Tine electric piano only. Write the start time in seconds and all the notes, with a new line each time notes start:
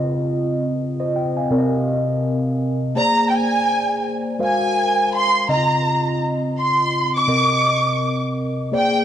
Already playing: C#3 C4 F4 D#5
1.00 C5 D#5
1.16 D#5 G5
1.37 F5 G#5
1.50 C3 C4 A#4 D5
1.58 D#5
2.95 A#3 G#4 C5 D5
4.39 G#3 F#4 A#4 C5 F5
5.48 C#3 C4 D#4 D#5
5.56 F4
7.27 C3 C4 A#4 D#5
8.72 A#3 G#4 C5 D5